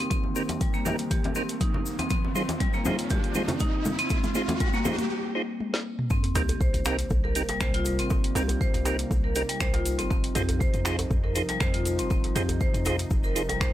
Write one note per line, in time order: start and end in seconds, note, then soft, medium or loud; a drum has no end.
0.00 2.06 D#3 medium
0.00 2.06 A#3 medium
0.00 2.06 C4 medium
0.00 2.07 G4 medium
0.00 riser medium
0.10 0.23 C4 loud
0.10 kick loud
0.10 closed hi-hat medium
0.10 mid tom medium
0.10 cabasa medium
0.24 high conga medium
0.35 0.48 C4 medium
0.35 0.43 C4 medium
0.35 0.43 D#4 medium
0.35 0.43 G4 medium
0.35 0.43 A#4 medium
0.35 cabasa loud
0.49 closed hi-hat soft
0.49 high conga medium
0.49 cabasa soft
0.61 0.73 G3 medium
0.61 kick loud
0.61 closed hi-hat medium
0.61 mid tom medium
0.61 cabasa medium
0.74 0.85 A#3 loud
0.74 cabasa soft
0.85 0.97 C4 medium
0.85 0.97 D#4 medium
0.85 0.97 G4 medium
0.85 0.97 A#4 loud
0.85 high conga loud
0.85 low conga medium
0.85 cabasa loud
0.98 closed hi-hat soft
0.98 cabasa soft
1.11 1.24 G4 loud
1.11 kick loud
1.11 closed hi-hat medium
1.11 mid tom medium
1.11 cabasa medium
1.24 closed hi-hat soft
1.24 high conga loud
1.35 1.48 C4 medium
1.35 1.43 C4 medium
1.35 1.43 D#4 medium
1.35 1.43 G4 medium
1.35 1.43 A#4 loud
1.35 cabasa loud
1.49 closed hi-hat soft
1.49 cabasa soft
1.60 1.73 D#4 medium
1.60 kick loud
1.60 closed hi-hat medium
1.60 mid tom medium
1.60 cabasa medium
1.74 low conga loud
1.86 cabasa loud
1.99 2.09 C4 loud
1.99 closed hi-hat soft
1.99 high conga medium
1.99 cabasa soft
2.10 5.08 D#3 medium
2.10 2.23 C4 loud
2.10 5.08 C4 medium
2.10 5.08 F4 medium
2.10 kick loud
2.10 closed hi-hat medium
2.10 mid tom medium
2.10 cabasa medium
2.25 high conga medium
2.35 2.48 C4 medium
2.35 2.43 D#4 medium
2.35 2.43 F4 medium
2.35 2.43 G#4 medium
2.35 2.43 C5 medium
2.35 mid tom medium
2.35 cabasa medium
2.49 closed hi-hat soft
2.49 high conga medium
2.49 cabasa soft
2.60 2.73 G3 medium
2.60 kick loud
2.60 closed hi-hat medium
2.60 mid tom medium
2.60 cabasa medium
2.73 2.85 A#3 loud
2.73 cabasa soft
2.85 2.97 D#4 medium
2.85 2.97 F4 medium
2.85 2.97 G#4 medium
2.85 2.97 C5 loud
2.85 mid tom medium
2.85 high conga loud
2.85 low conga medium
2.85 cabasa loud
2.99 closed hi-hat soft
2.99 cabasa soft
3.10 3.23 G4 loud
3.10 kick loud
3.10 closed hi-hat medium
3.10 mid tom medium
3.10 low conga loud
3.10 cabasa medium
3.24 closed hi-hat soft
3.34 3.48 C4 medium
3.34 3.43 D#4 loud
3.34 3.43 F4 medium
3.34 3.43 G#4 medium
3.34 3.43 C5 loud
3.34 mid tom medium
3.34 high conga medium
3.34 cabasa loud
3.48 closed hi-hat soft
3.48 low conga loud
3.48 cabasa soft
3.59 3.73 D#4 medium
3.59 kick loud
3.59 closed hi-hat medium
3.59 mid tom medium
3.59 cabasa medium
3.85 mid tom medium
3.85 high conga medium
3.85 low conga medium
3.85 cabasa loud
3.99 4.09 C4 loud
3.99 closed hi-hat soft
3.99 cabasa soft
4.10 4.23 C4 loud
4.10 kick loud
4.10 closed hi-hat medium
4.10 mid tom medium
4.10 cabasa medium
4.23 closed hi-hat soft
4.23 mid tom medium
4.23 high conga medium
4.23 cabasa soft
4.35 4.48 C4 medium
4.35 4.42 D#4 medium
4.35 4.42 F4 medium
4.35 4.42 G#4 medium
4.35 4.42 C5 medium
4.35 mid tom medium
4.35 cabasa medium
4.48 closed hi-hat soft
4.48 mid tom medium
4.48 high conga loud
4.48 cabasa soft
4.60 4.73 G3 medium
4.60 kick loud
4.60 closed hi-hat medium
4.60 mid tom loud
4.60 cabasa medium
4.73 4.85 A#3 loud
4.73 mid tom medium
4.73 cabasa soft
4.85 4.96 D#4 medium
4.85 4.96 F4 medium
4.85 4.96 G#4 medium
4.85 4.96 C5 loud
4.85 mid tom loud
4.85 high conga loud
4.85 low conga medium
4.85 cabasa loud
4.99 closed hi-hat soft
4.99 mid tom medium
4.99 cabasa soft
5.35 5.42 D#4 loud
5.35 5.42 F4 medium
5.35 5.42 G#4 medium
5.35 5.42 C5 loud
5.60 high tom medium
5.74 snare medium
5.99 mid tom medium
6.10 10.07 C3 medium
6.10 10.07 G3 medium
6.10 10.07 A#3 medium
6.10 6.23 C4 medium
6.10 13.73 D#4 medium
6.10 kick loud
6.10 sub drop medium
6.10 djembe slap medium
6.10 cabasa medium
6.23 closed hi-hat soft
6.23 djembe tone medium
6.35 6.67 C2 loud
6.35 6.43 C4 medium
6.35 6.42 D#4 medium
6.35 6.42 G4 medium
6.35 6.48 G4 medium
6.35 6.43 A#4 medium
6.35 open hi-hat medium
6.35 djembe slap loud
6.35 cabasa medium
6.49 closed hi-hat medium
6.49 djembe bass loud
6.49 cabasa soft
6.60 6.73 C5 medium
6.60 kick loud
6.60 djembe tone medium
6.60 cabasa medium
6.74 7.05 C2 medium
6.74 closed hi-hat soft
6.74 cabasa soft
6.85 6.97 C4 medium
6.85 6.97 D#4 medium
6.85 6.97 G4 medium
6.85 6.97 A#4 loud
6.85 finger snap loud
6.85 open hi-hat loud
6.85 djembe slap loud
6.85 djembe tone medium
6.85 cabasa loud
6.99 closed hi-hat medium
6.99 cabasa soft
7.10 7.42 C2 medium
7.10 kick loud
7.10 djembe bass loud
7.10 cabasa soft
7.24 7.35 A#4 medium
7.24 djembe tone medium
7.35 7.43 C4 loud
7.35 7.43 D#4 medium
7.35 7.43 G4 medium
7.35 7.43 A#4 loud
7.35 open hi-hat loud
7.35 cabasa medium
7.49 7.55 G3 medium
7.49 closed hi-hat medium
7.49 djembe slap medium
7.49 djembe tone medium
7.49 cabasa soft
7.61 8.01 C2 loud
7.61 7.74 C5 medium
7.61 finger snap medium
7.61 kick loud
7.61 cabasa medium
7.74 7.85 F4 medium
7.74 closed hi-hat soft
7.85 open hi-hat loud
7.85 djembe tone medium
7.85 cabasa medium
7.99 8.30 G1 loud
7.99 8.10 C4 medium
7.99 closed hi-hat medium
7.99 cabasa soft
8.10 8.23 C4 medium
8.10 kick loud
8.10 djembe slap medium
8.10 djembe tone medium
8.10 cabasa medium
8.24 closed hi-hat soft
8.35 8.67 C2 loud
8.35 8.43 C4 medium
8.35 8.43 D#4 medium
8.35 8.43 G4 medium
8.35 8.49 G4 medium
8.35 8.43 A#4 medium
8.35 open hi-hat loud
8.35 djembe slap loud
8.35 cabasa loud
8.48 closed hi-hat medium
8.48 djembe tone medium
8.48 djembe bass medium
8.48 cabasa soft
8.61 8.73 C5 medium
8.61 kick loud
8.61 cabasa medium
8.74 9.05 C2 medium
8.74 closed hi-hat soft
8.74 djembe tone medium
8.74 cabasa soft
8.85 8.97 C4 medium
8.85 8.97 D#4 medium
8.85 8.97 G4 medium
8.85 8.97 A#4 loud
8.85 open hi-hat loud
8.85 djembe slap loud
8.85 cabasa loud
8.99 closed hi-hat medium
8.99 cabasa soft
9.11 9.43 C2 medium
9.11 kick loud
9.11 djembe tone loud
9.11 cabasa medium
9.24 9.35 A#4 medium
9.35 9.43 C4 loud
9.35 9.43 D#4 medium
9.35 9.43 G4 medium
9.35 9.43 A#4 loud
9.35 open hi-hat loud
9.35 djembe tone medium
9.35 cabasa medium
9.49 9.55 G3 medium
9.49 closed hi-hat medium
9.49 cabasa soft
9.60 10.01 C2 loud
9.60 9.73 C5 medium
9.60 finger snap loud
9.60 kick loud
9.60 cabasa medium
9.74 9.84 F4 medium
9.74 closed hi-hat soft
9.74 djembe slap medium
9.74 djembe tone medium
9.85 open hi-hat loud
9.85 cabasa loud
9.99 10.30 F1 loud
9.99 10.09 C4 medium
9.99 closed hi-hat medium
9.99 djembe tone medium
9.99 cabasa soft
10.11 13.73 C3 medium
10.11 13.73 F3 medium
10.11 10.23 C4 medium
10.11 kick loud
10.11 djembe slap medium
10.11 cabasa medium
10.24 closed hi-hat soft
10.35 10.68 F2 loud
10.35 10.43 D#4 medium
10.35 10.43 F4 medium
10.35 10.48 G4 medium
10.35 10.43 G#4 medium
10.35 10.43 C5 medium
10.35 open hi-hat medium
10.35 djembe slap loud
10.35 djembe tone loud
10.35 cabasa medium
10.49 closed hi-hat medium
10.49 djembe bass medium
10.49 cabasa soft
10.59 10.73 C5 medium
10.59 kick loud
10.59 djembe tone medium
10.59 cabasa medium
10.74 11.05 F2 medium
10.74 closed hi-hat soft
10.74 cabasa soft
10.85 10.97 D#4 medium
10.85 10.97 F4 medium
10.85 10.97 G#4 medium
10.85 10.97 C5 medium
10.85 finger snap loud
10.85 open hi-hat medium
10.85 djembe slap loud
10.85 cabasa loud
10.99 closed hi-hat medium
10.99 djembe tone loud
10.99 cabasa soft
11.10 11.43 F2 medium
11.10 kick loud
11.10 djembe bass medium
11.10 cabasa medium
11.24 11.34 A#4 medium
11.24 djembe tone medium
11.35 11.42 D#4 loud
11.35 11.42 F4 medium
11.35 11.42 G#4 medium
11.35 11.42 C5 loud
11.35 open hi-hat medium
11.35 cabasa medium
11.49 11.55 G3 medium
11.49 closed hi-hat medium
11.49 djembe slap medium
11.49 cabasa soft
11.60 12.01 F2 loud
11.60 11.73 C5 medium
11.60 finger snap loud
11.60 kick loud
11.60 djembe tone medium
11.60 cabasa medium
11.74 11.84 F4 medium
11.74 closed hi-hat soft
11.85 open hi-hat medium
11.85 djembe tone medium
11.85 cabasa loud
11.99 12.30 F1 loud
11.99 12.10 C4 medium
11.99 closed hi-hat medium
11.99 cabasa soft
12.10 12.23 C4 medium
12.10 kick loud
12.10 djembe slap medium
12.10 cabasa medium
12.24 closed hi-hat soft
12.24 djembe tone medium
12.35 12.68 F2 loud
12.35 12.43 D#4 medium
12.35 12.43 F4 medium
12.35 12.48 G4 medium
12.35 12.43 G#4 medium
12.35 12.43 C5 loud
12.35 open hi-hat medium
12.35 djembe slap loud
12.35 cabasa medium
12.49 closed hi-hat medium
12.49 djembe tone medium
12.49 djembe bass medium
12.49 cabasa soft
12.61 12.73 C5 medium
12.61 kick loud
12.61 cabasa medium
12.74 13.05 F2 medium
12.74 closed hi-hat soft
12.74 cabasa soft
12.85 12.97 D#4 medium
12.85 12.97 F4 medium
12.85 12.97 G#4 medium
12.85 12.97 C5 loud
12.85 open hi-hat medium
12.85 djembe slap loud
12.85 djembe tone loud
12.85 cabasa medium
12.99 closed hi-hat medium
12.99 cabasa soft
13.11 13.63 F1 loud
13.11 kick loud
13.11 djembe tone medium
13.11 cabasa soft
13.24 13.35 A#4 medium
13.24 cabasa soft
13.36 13.43 D#4 loud
13.36 13.43 F4 medium
13.36 13.43 G#4 medium
13.36 13.43 C5 loud
13.36 open hi-hat medium
13.36 cabasa loud
13.49 13.55 G3 medium
13.49 closed hi-hat medium
13.49 djembe tone loud
13.49 cabasa soft
13.61 13.73 F2 medium
13.61 13.73 C5 medium
13.61 finger snap loud
13.61 kick loud
13.61 cabasa medium